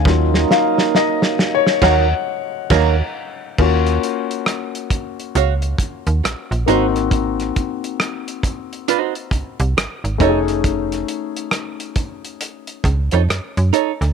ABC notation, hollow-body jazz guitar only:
X:1
M:4/4
L:1/16
Q:"Swing 16ths" 1/4=68
K:Ebm
V:1 name="Hollow-body jazz guitar"
z8 [Gdf]2 z2 [Gdf]2 z2 | z8 [Gdf] z4 z [EG=c] z | z8 [EG=c] z4 z [E=A^c] z | z8 z3 [E=A^c] z2 [EAc] z |]